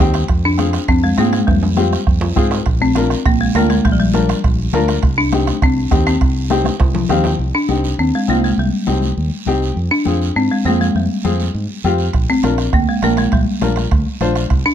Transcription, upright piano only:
0.00 0.20 C4 medium
0.00 0.20 D#4 medium
0.00 0.21 G4 medium
0.58 0.79 C4 medium
0.58 0.79 F4 medium
0.58 0.79 G#4 medium
1.17 1.38 C4 medium
1.17 1.39 F4 medium
1.17 1.39 G#4 medium
1.77 1.98 C4 medium
1.77 1.98 F4 medium
1.77 1.98 G4 medium
2.36 2.57 C4 medium
2.36 2.57 F4 medium
2.36 2.57 G#4 medium
2.96 3.16 D4 medium
2.96 3.17 F4 medium
2.96 3.17 A#4 medium
3.55 3.76 D4 medium
3.55 3.76 F4 medium
3.55 3.76 A#4 medium
4.14 4.34 D4 medium
4.14 4.35 F4 medium
4.14 4.35 A#4 medium
4.73 4.94 D4 medium
4.73 4.94 F4 medium
4.73 4.94 A#4 loud
5.33 5.53 C4 medium
5.33 5.53 D#4 medium
5.33 5.54 G4 medium
5.91 6.12 C4 medium
5.91 6.12 D#4 medium
5.91 6.12 G4 medium
6.50 6.71 C4 medium
6.50 6.71 D#4 medium
6.50 6.72 G4 medium
7.10 7.31 C4 medium
7.10 7.31 D#4 medium
7.10 7.31 G4 medium
7.10 7.24 F5 medium
7.25 7.38 G5 medium
7.69 7.90 C4 medium
7.69 7.90 D#4 medium
7.69 7.90 G4 medium
8.28 8.49 C4 medium
8.28 8.49 D#4 medium
8.28 8.49 F4 medium
8.87 9.08 C4 medium
8.87 9.08 D#4 medium
8.87 9.08 G4 medium
9.47 9.68 C4 medium
9.47 9.68 D#4 medium
9.47 9.68 G4 medium
9.47 9.75 G5 medium
10.06 10.27 C4 medium
10.06 10.27 F4 medium
10.06 10.27 G#4 medium
10.65 10.86 C4 medium
10.65 10.86 F4 medium
10.65 10.86 G#4 medium
11.24 11.45 C4 medium
11.24 11.46 F4 medium
11.24 11.46 G#4 medium
11.85 12.05 C4 medium
11.85 12.05 F4 medium
11.85 12.05 G4 medium
12.44 12.64 D4 medium
12.44 12.64 F4 medium
12.44 12.65 A#4 medium
13.02 13.23 D4 medium
13.02 13.23 F4 medium
13.02 13.23 A#4 medium
13.62 13.83 D4 medium
13.62 13.83 F4 medium
13.62 13.83 A#4 medium
14.21 14.42 D4 medium
14.21 14.42 F4 medium
14.21 14.42 C5 medium

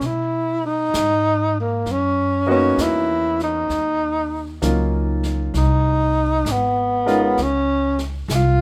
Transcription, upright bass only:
0.01 0.90 B2 medium
0.94 1.83 G#2 medium
1.86 2.75 F#2 medium
2.78 3.67 E2 medium
3.69 4.59 D#2 medium
4.62 5.51 C#2 medium
5.54 6.43 C2 medium
6.45 7.34 G#1 medium
7.38 8.27 C#2 medium
8.28 8.61 C2 loud

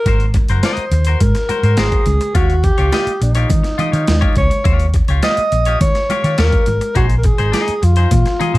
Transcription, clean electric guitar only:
0.07 0.24 F#4 medium
0.07 0.25 A#4 medium
0.07 0.25 C5 medium
0.35 muted clean electric guitar stroke soft
0.50 0.62 F#4 medium
0.50 0.63 A#4 soft
0.50 0.64 C5 medium
0.64 0.83 F#4 medium
0.64 0.84 A#4 medium
0.64 0.84 D#5 medium
0.93 muted clean electric guitar stroke soft
1.07 1.21 F#4 soft
1.07 1.21 A#4 medium
1.07 1.21 C5 medium
1.35 muted clean electric guitar stroke soft
1.49 1.63 F#4 medium
1.49 1.63 A#4 medium
1.49 1.62 C5 medium
1.64 1.77 F#4 soft
1.64 1.78 A#4 medium
1.64 1.78 C5 medium
1.78 2.04 F#4 medium
1.78 2.05 A#4 loud
1.78 2.05 C5 loud
2.06 muted clean electric guitar stroke soft
2.21 muted clean electric guitar stroke soft
2.35 2.53 F4 medium
2.35 2.54 G4 medium
2.35 2.54 C#5 medium
2.63 muted clean electric guitar stroke soft
2.78 2.91 F4 soft
2.78 2.92 G4 medium
2.78 2.93 C#5 medium
2.92 3.11 F4 medium
2.92 3.11 G4 medium
2.92 3.12 D#5 medium
3.21 muted clean electric guitar stroke soft
3.35 3.48 F4 soft
3.35 3.49 G4 medium
3.35 3.50 C#5 medium
3.50 muted clean electric guitar stroke soft
3.64 muted clean electric guitar stroke soft
3.78 3.93 F4 medium
3.78 3.92 G4 medium
3.78 3.92 D#5 medium
3.92 4.06 F4 medium
3.92 4.07 G4 medium
3.92 4.07 C#5 medium
4.07 muted clean electric guitar stroke soft
4.21 4.35 F4 medium
4.21 4.35 G4 medium
4.21 4.36 C#5 medium
4.36 muted clean electric guitar stroke soft
4.50 muted clean electric guitar stroke soft
4.64 4.85 F4 medium
4.64 4.85 G4 medium
4.64 4.86 C#5 medium
4.95 muted clean electric guitar stroke soft
5.08 5.21 F4 soft
5.08 5.23 G4 medium
5.08 5.23 C#5 medium
5.23 5.41 F4 medium
5.23 5.42 G4 medium
5.23 5.42 D#5 medium
5.52 muted clean electric guitar stroke soft
5.66 5.80 F4 medium
5.66 5.80 G4 medium
5.66 5.81 C#5 medium
5.95 muted clean electric guitar stroke soft
6.10 6.24 F4 medium
6.10 6.23 G4 medium
6.10 6.22 C#5 medium
6.24 6.37 F4 medium
6.24 6.38 G4 medium
6.24 6.38 C#5 medium
6.38 6.65 F4 medium
6.38 6.65 G4 medium
6.38 6.66 C#5 loud
6.67 muted clean electric guitar stroke soft
6.81 muted clean electric guitar stroke medium
6.95 7.14 D#4 medium
6.95 7.14 G#4 medium
6.95 7.15 C5 medium
7.24 muted clean electric guitar stroke soft
7.38 7.51 D#4 medium
7.38 7.52 G#4 medium
7.38 7.53 C5 medium
7.52 7.73 D#4 medium
7.52 7.73 G#4 medium
7.52 7.74 D#5 medium
7.82 muted clean electric guitar stroke soft
7.97 8.10 D#4 soft
7.97 8.10 G#4 soft
7.97 8.11 C5 medium
8.11 muted clean electric guitar stroke soft
8.26 muted clean electric guitar stroke medium
8.39 8.54 D#4 medium
8.39 8.54 G#4 medium
8.39 8.54 D#5 medium
8.54 8.58 G#4 medium
8.54 8.58 C5 medium

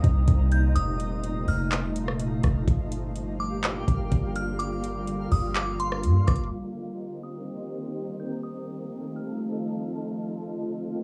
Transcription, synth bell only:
0.00 0.48 D#6 medium
0.52 0.75 G6 medium
0.75 1.44 D#6 loud
1.48 1.71 F6 medium
3.40 4.32 D6 medium
4.36 4.59 F6 medium
4.59 5.27 D6 medium
5.32 5.55 D#6 medium
5.56 5.79 D6 medium
5.80 6.25 C6 medium
6.27 6.50 D6 medium
7.23 8.16 D#6 medium
8.20 8.43 G6 medium
8.43 9.12 D#6 medium
9.16 9.39 F6 medium

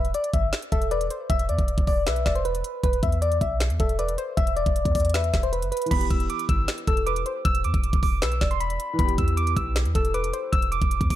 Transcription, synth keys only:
0.00 0.10 E5 medium
0.14 0.30 D5 medium
0.34 0.49 E5 medium
0.72 0.87 E5 medium
0.91 1.06 D5 medium
1.30 1.45 E5 loud
1.49 1.85 D5 medium
1.88 2.03 D5 medium
2.07 2.34 E5 medium
2.35 2.43 C5 medium
2.45 2.81 B4 medium
2.83 2.99 B4 medium
3.03 3.18 E5 medium
3.22 3.37 D5 medium
3.41 3.56 E5 medium
3.80 3.95 E5 medium
3.99 4.14 D5 medium
4.37 4.52 E5 loud
4.56 4.93 D5 medium
4.95 5.10 D5 medium
5.14 5.41 E5 medium
5.43 5.51 C5 medium
5.52 5.68 B4 medium
5.72 5.87 B4 medium
5.91 6.06 B5 loud
6.11 6.26 E6 medium
6.30 6.45 D6 medium
6.49 6.64 E6 medium
6.87 7.03 E6 medium
7.06 7.22 D6 medium
7.45 7.60 E6 loud
7.65 8.01 D6 medium
8.03 8.18 D6 medium
8.22 8.49 E6 medium
8.51 8.58 C6 medium
8.60 8.97 B5 medium
8.99 9.14 B5 loud
9.18 9.33 E6 medium
9.37 9.52 D6 medium
9.56 9.72 E6 medium
9.96 10.11 E6 medium
10.14 10.29 D6 medium
10.52 10.68 E6 loud
10.72 11.08 D6 medium
11.10 11.16 D6 medium

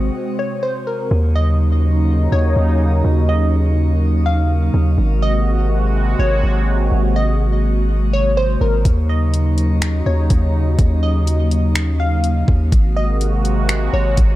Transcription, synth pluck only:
0.39 0.62 C#5 medium
0.63 0.86 C5 medium
0.87 1.10 A#4 medium
1.36 1.58 D#5 medium
2.32 3.01 C#5 medium
3.29 3.52 D#5 medium
4.26 4.94 F5 medium
5.22 5.45 D#5 medium
6.19 6.88 C#5 medium
7.16 7.39 D#5 medium
8.13 8.36 C#5 medium
8.37 8.60 C5 medium
8.61 8.84 A#4 medium
9.09 9.32 D#5 medium
10.06 10.75 C#5 medium
11.03 11.26 D#5 medium
12.00 12.68 F5 medium
12.97 13.20 D#5 medium
13.94 14.36 C#5 medium

